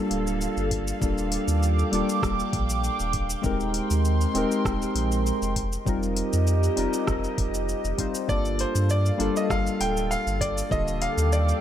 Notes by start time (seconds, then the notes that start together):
Already playing: G3 A#3 D4 F4 A4 F5
0.11 D1, open hi-hat
0.27 shaker
0.41 shaker
0.57 G1, shaker
0.71 kick, open hi-hat
0.88 shaker
1.00 D#1 G3 A#3 D4 F4 A4 G5 D6, kick, shaker
1.18 shaker
1.32 open hi-hat
1.48 D#2, shaker
1.63 shaker
1.79 shaker
1.91 D#1 G3 A#3 D4 F4 A4, open hi-hat
2.09 shaker
2.23 D#1, kick, cross-stick, shaker
2.40 shaker
2.53 A#1, kick, open hi-hat
2.70 shaker
2.84 shaker
3.00 D#1, shaker
3.13 kick, open hi-hat
3.30 shaker
3.42 D#1 G#3 C4 D#4 G4 C6, kick, shaker
3.46 A#4
3.60 shaker
3.74 open hi-hat
3.91 D#2, shaker
4.05 shaker
4.21 shaker
4.34 D#1 G#3 C4 D#4 G4 A#4, open hi-hat
4.52 shaker
4.65 D#1, kick, cross-stick, shaker
4.82 shaker
4.95 A#1, open hi-hat
5.12 shaker
5.26 shaker
5.42 F1, shaker
5.56 G4 D#5, kick, open hi-hat
5.73 shaker
5.85 F1 G3 C4 D#4 F4 A#4, kick, shaker
6.03 shaker
6.17 open hi-hat
6.33 F2, shaker
6.47 shaker
6.63 shaker
6.76 F1 G3 C4 D#4 F4 A#4, open hi-hat
6.93 shaker
7.07 F1, kick, cross-stick, shaker
7.24 shaker
7.38 F1, kick, open hi-hat
7.54 shaker
7.69 shaker
7.85 F1, shaker
7.98 G3 C4 D#4 F4 C5, kick, open hi-hat
8.15 shaker
8.27 G1 G3 A#3 D4 F4 A4 D5 F5, kick, shaker
8.45 shaker
8.59 C5, open hi-hat
8.75 G2, shaker
8.90 D5, shaker
9.06 shaker
9.18 G1 G3 A#3 D4 F4 A4, open hi-hat
9.36 D#5, shaker
9.50 G1 F5, kick, cross-stick, shaker
9.67 shaker
9.80 D1 G5, open hi-hat
9.97 shaker
10.11 F5, shaker
10.27 G1, shaker
10.41 D5, kick, open hi-hat
10.58 shaker
10.70 D#1 D3 G3 A#3 F4 A4 D#5 F5 G5 D6, kick, shaker
10.88 shaker
11.02 F5, open hi-hat
11.17 D#2, shaker
11.32 D5, shaker
11.49 shaker